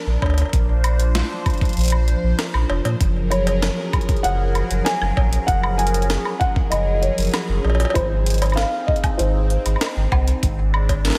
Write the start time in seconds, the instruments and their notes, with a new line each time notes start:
Already playing: analog synth pad F3 D4 A#4
0.07 sub bass A#1
0.22 sub bass D2, kick, cowbell, high woodblock
0.26 cowbell
0.30 cowbell
0.34 closed hi-hat, cowbell
0.38 cowbell
0.42 cowbell
0.45 cowbell
0.49 sub bass A#1, analog synth pad C5, kick, closed hi-hat, cowbell
0.84 closed hi-hat, high woodblock
1.00 closed hi-hat
1.15 snare, closed hi-hat
1.46 kick, closed hi-hat, high woodblock
1.50 closed hi-hat
1.54 closed hi-hat
1.58 closed hi-hat
1.61 kick, closed hi-hat
1.65 closed hi-hat
1.69 closed hi-hat
1.73 sub bass A#1, closed hi-hat
1.77 closed hi-hat
1.79 closed hi-hat
1.81 closed hi-hat
1.84 closed hi-hat
1.86 closed hi-hat
1.88 closed hi-hat
1.90 closed hi-hat, high woodblock
2.08 closed hi-hat
2.23 sub bass A#1
2.39 snare, closed hi-hat
2.54 sub bass A#1, high woodblock
2.70 sub bass F1, cowbell
2.85 sub bass A#2, closed hi-hat, cowbell
3.00 sub bass F#1, analog synth pad F#3 C#4 G#4 A#4, kick, closed hi-hat
3.30 felt piano C#5, closed hi-hat, high woodblock
3.47 closed hi-hat, cowbell
3.62 snare, closed hi-hat
3.93 kick, closed hi-hat, high woodblock
4.01 closed hi-hat
4.09 kick, closed hi-hat
4.17 closed hi-hat
4.23 sub bass F#1, felt piano F#5, closed hi-hat
4.55 closed hi-hat, high woodblock
4.71 sub bass F#1, closed hi-hat
4.85 felt piano G#5, snare, closed hi-hat
5.02 sub bass F#1, high woodblock
5.17 sub bass A#1, kick, cowbell
5.33 closed hi-hat
5.47 sub bass F#1, felt piano F#5, kick, closed hi-hat
5.63 high woodblock
5.78 felt piano G#5, closed hi-hat
5.87 closed hi-hat
5.94 closed hi-hat
6.02 closed hi-hat
6.10 snare, closed hi-hat
6.25 high woodblock
6.39 felt piano F#5, kick, closed hi-hat
6.56 kick
6.70 sub bass F#1, felt piano D#5, closed hi-hat, high woodblock
6.94 felt piano D#5
7.01 felt piano C#5, closed hi-hat
7.18 sub bass F#1, closed hi-hat
7.20 closed hi-hat
7.23 closed hi-hat
7.25 closed hi-hat
7.27 closed hi-hat
7.29 closed hi-hat
7.31 snare, closed hi-hat
7.34 closed hi-hat, high woodblock
7.49 sub bass F#1
7.64 sub bass A#1, cowbell
7.70 cowbell
7.75 cowbell
7.80 closed hi-hat, cowbell
7.85 cowbell
7.90 felt piano C5, cowbell
7.95 sub bass G#1, analog synth pad C4 D#4, kick, closed hi-hat, high woodblock
8.26 closed hi-hat
8.30 closed hi-hat
8.34 closed hi-hat
8.38 closed hi-hat
8.42 closed hi-hat, cowbell, high woodblock
8.46 closed hi-hat
8.50 closed hi-hat, high woodblock
8.54 felt piano F5, snare, closed hi-hat
8.57 closed hi-hat
8.63 high woodblock
8.87 felt piano D#5, kick
8.96 closed hi-hat
9.04 kick, closed hi-hat, high woodblock
9.18 sub bass G#1, felt piano C5, closed hi-hat
9.50 closed hi-hat
9.66 sub bass G#1, closed hi-hat, high woodblock
9.76 high woodblock
9.81 snare, closed hi-hat
9.86 high woodblock
9.97 sub bass G#1
10.12 sub bass C2, kick, cowbell, high woodblock
10.28 closed hi-hat
10.43 sub bass G#1, analog synth pad D4, kick, closed hi-hat
10.74 high woodblock
10.89 kick, closed hi-hat, cowbell
11.05 snare, closed hi-hat
11.07 snare
11.10 snare
11.13 snare